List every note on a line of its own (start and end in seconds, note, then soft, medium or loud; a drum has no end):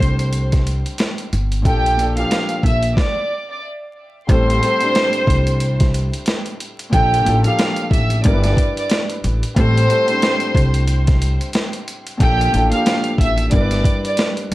0.00 0.82 C2 medium
0.00 1.67 A2 medium
0.00 1.67 G3 medium
0.00 1.67 C4 medium
0.00 0.37 D4 medium
0.00 1.66 A4 medium
0.00 0.49 C5 loud
0.00 0.50 C6 loud
0.00 kick loud
0.00 closed hi-hat medium
0.19 closed hi-hat medium
0.33 closed hi-hat medium
0.52 kick loud
0.52 snare soft
0.52 closed hi-hat medium
0.67 closed hi-hat medium
0.86 closed hi-hat medium
0.98 finger snap medium
0.98 snare loud
0.98 closed hi-hat loud
1.18 closed hi-hat soft
1.33 1.65 G1 medium
1.33 closed hi-hat medium
1.52 closed hi-hat medium
1.62 2.22 A#1 loud
1.62 1.87 A#2 medium
1.62 1.88 F3 medium
1.62 1.88 D4 medium
1.62 2.15 G5 loud
1.62 kick loud
1.62 closed hi-hat medium
1.66 2.15 G4 medium
1.66 1.89 A4 medium
1.86 closed hi-hat medium
1.96 2.10 A#2 medium
1.96 2.11 F3 medium
1.96 2.11 D4 medium
1.96 closed hi-hat medium
2.01 2.12 A4 medium
2.15 2.96 A#2 medium
2.15 2.96 F3 medium
2.15 2.97 D4 medium
2.15 2.61 F5 medium
2.15 2.61 F6 medium
2.15 closed hi-hat medium
2.19 2.98 G4 medium
2.31 finger snap medium
2.31 snare loud
2.31 closed hi-hat loud
2.49 closed hi-hat soft
2.63 2.92 A#1 medium
2.63 2.94 E5 medium
2.63 2.95 E6 medium
2.63 kick medium
2.63 closed hi-hat medium
2.83 closed hi-hat medium
2.97 3.47 D5 medium
2.97 3.47 D6 medium
2.97 kick loud
2.97 snare medium
3.50 3.62 D5 medium
3.50 3.62 D6 medium
4.27 4.58 A1 loud
4.27 4.52 A2 medium
4.27 4.52 G3 medium
4.27 4.53 C4 medium
4.27 5.77 C5 loud
4.27 5.77 C6 medium
4.27 kick loud
4.27 closed hi-hat medium
4.31 4.54 A4 medium
4.50 closed hi-hat medium
4.59 4.73 A2 medium
4.59 4.74 G3 medium
4.59 4.75 C4 medium
4.59 closed hi-hat medium
4.64 4.75 A4 medium
4.80 5.63 A2 medium
4.80 5.64 G3 medium
4.80 5.64 C4 medium
4.80 closed hi-hat medium
4.84 5.65 D4 medium
4.95 snare loud
4.95 closed hi-hat loud
5.13 closed hi-hat medium
5.27 6.09 C2 medium
5.27 kick loud
5.27 closed hi-hat medium
5.47 closed hi-hat medium
5.60 closed hi-hat medium
5.80 kick loud
5.80 snare soft
5.80 closed hi-hat medium
5.94 closed hi-hat medium
6.14 closed hi-hat medium
6.26 snare loud
6.26 closed hi-hat loud
6.46 closed hi-hat soft
6.60 closed hi-hat medium
6.79 closed hi-hat medium
6.89 7.21 A#1 loud
6.89 7.15 A#2 medium
6.89 7.15 F3 medium
6.89 7.16 D4 medium
6.89 7.42 G4 medium
6.89 7.42 G5 loud
6.89 kick loud
6.89 closed hi-hat medium
6.94 7.17 A4 medium
7.14 closed hi-hat medium
7.24 7.43 A1 medium
7.24 7.38 A#2 medium
7.24 7.38 F3 medium
7.24 7.39 D4 medium
7.24 closed hi-hat medium
7.28 7.40 A4 medium
7.43 8.24 F3 medium
7.43 8.23 A#3 medium
7.43 8.25 D4 medium
7.43 7.88 F5 medium
7.43 7.89 F6 medium
7.43 closed hi-hat medium
7.47 8.25 G4 medium
7.59 snare loud
7.59 closed hi-hat loud
7.76 closed hi-hat medium
7.91 8.20 A1 medium
7.91 8.22 E5 medium
7.91 8.22 E6 medium
7.91 kick loud
7.91 closed hi-hat medium
8.10 closed hi-hat medium
8.22 8.54 G1 loud
8.22 9.30 G2 medium
8.22 9.31 G3 medium
8.22 9.32 E4 medium
8.22 8.74 D5 medium
8.22 8.74 D6 medium
8.22 kick loud
8.22 closed hi-hat loud
8.27 8.33 A#4 medium
8.33 9.36 B4 medium
8.44 snare soft
8.44 closed hi-hat medium
8.57 kick loud
8.57 closed hi-hat medium
8.77 8.89 D5 medium
8.77 8.90 D6 medium
8.77 closed hi-hat medium
8.90 snare loud
8.90 closed hi-hat loud
9.10 closed hi-hat soft
9.24 9.41 A1 loud
9.24 closed hi-hat medium
9.43 closed hi-hat medium
9.55 9.85 A1 loud
9.55 9.79 A2 medium
9.55 9.80 G3 medium
9.55 9.81 C4 medium
9.55 11.04 C5 loud
9.55 11.05 C6 loud
9.55 kick loud
9.55 closed hi-hat medium
9.59 9.81 A4 medium
9.78 closed hi-hat medium
9.87 10.01 A2 medium
9.87 10.02 G3 medium
9.87 10.02 C4 medium
9.87 closed hi-hat medium
9.91 10.03 A4 medium
10.07 10.90 A2 medium
10.07 10.91 G3 medium
10.07 10.92 C4 medium
10.07 closed hi-hat medium
10.11 10.92 D4 medium
10.22 snare loud
10.22 closed hi-hat loud
10.40 closed hi-hat medium
10.55 11.37 C2 medium
10.55 kick loud
10.55 closed hi-hat medium
10.74 closed hi-hat medium
10.88 closed hi-hat loud
11.07 kick loud
11.07 snare soft
11.07 closed hi-hat medium
11.22 closed hi-hat medium
11.41 closed hi-hat medium
11.53 snare loud
11.53 closed hi-hat loud
11.73 closed hi-hat soft
11.88 closed hi-hat medium
12.07 closed hi-hat medium
12.17 12.49 A#1 loud
12.17 12.42 A#2 medium
12.17 12.43 F3 medium
12.17 12.44 D4 medium
12.17 12.70 G4 medium
12.17 12.70 G5 loud
12.17 kick loud
12.17 closed hi-hat medium
12.21 12.44 A4 medium
12.41 closed hi-hat medium
12.51 12.71 A1 medium
12.51 12.65 A#2 medium
12.51 12.66 F3 medium
12.51 12.66 D4 medium
12.51 closed hi-hat medium
12.56 12.67 A4 medium
12.70 13.51 F3 medium
12.70 13.51 A#3 medium
12.70 13.52 D4 medium
12.70 13.16 F5 medium
12.70 13.16 F6 medium
12.70 closed hi-hat medium
12.75 13.53 G4 medium
12.86 snare loud
12.86 closed hi-hat loud
13.04 closed hi-hat medium
13.18 13.47 A1 medium
13.18 13.49 E5 medium
13.18 13.49 E6 medium
13.18 kick loud
13.18 closed hi-hat medium
13.38 closed hi-hat medium
13.50 13.81 G1 loud
13.50 14.54 G2 medium
13.50 14.54 G3 medium
13.50 14.54 E4 medium
13.50 14.02 D5 medium
13.50 14.02 D6 medium
13.50 kick loud
13.50 closed hi-hat medium
13.54 13.61 A#4 medium
13.61 14.54 B4 medium
13.71 snare soft
13.71 closed hi-hat medium
13.84 kick loud
13.84 closed hi-hat medium
14.05 14.17 D5 medium
14.05 14.17 D6 medium
14.05 closed hi-hat medium
14.17 snare loud
14.17 closed hi-hat loud
14.37 closed hi-hat soft